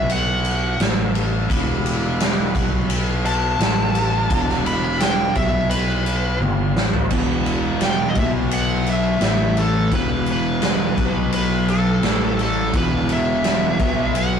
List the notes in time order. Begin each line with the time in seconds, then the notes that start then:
Already playing: B1 B3 F#4 B4 E5
0.09 F#5, ride
0.45 ride
0.79 A1 A3 E4 A4, snare, ride
1.15 ride
1.50 E1 G3 B3 E4 B4, kick, ride
1.86 ride
2.20 snare, ride
2.54 B1 B3 F#4 B4, kick, ride
2.90 ride
3.25 A5, ride
3.59 A1 A3 E4 A4, snare, ride
3.95 ride
4.28 E1 G3 B3 E4 B4, kick, ride
4.49 snare
4.66 B5, ride
4.85 B5
5.00 G5, snare, ride
5.35 B1 B3 F#4 B4 E5, kick, ride
5.70 B4, ride
6.06 ride
6.38 G1 G3 B3 E4 B4
6.42 high tom
6.75 A1, snare
6.93 floor tom
7.09 E1 E2 B2 E3 G3 B3 E4 B4, kick, crash
7.46 ride
7.81 G5, snare, ride
8.08 D#5
8.15 B1 B2 F#3 B3 F#4 B4, kick, ride
8.19 E5
8.51 F#5, ride
8.86 E5, ride
9.19 A1 A2 E3 A3 E4 A4, snare, ride
9.25 E5
9.57 A4, ride
9.90 E1 E2 B2 E3 G3 B3 E4 B4, kick, ride
9.95 B4
10.26 ride
10.32 B4
10.62 snare, ride
10.96 B1 B2 F#3 B3 F#4 B4, kick, ride
11.32 B4, ride
11.68 A4, ride
12.01 A1 A2 E3 A3 E4 A4, snare, ride
12.39 A4, ride
12.73 E1 E2 B2 E3 G3 B3 E4 B4, kick, ride
13.09 E5, ride
13.44 snare, ride
13.79 B1 B2 F#3 B3 F#4 B4, kick, ride
14.15 F#5, ride